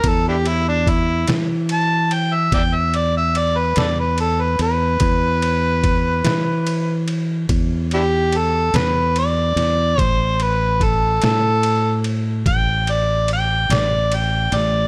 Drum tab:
RD |xxxxxxxxxxxx|xxxxxxxxxxxx|xxxxxxxxxxxx|
SD |---o-----o--|---o-----o-o|---o-----o-o|
BD |o-o---o-----|o-o---o-----|o-o---o-----|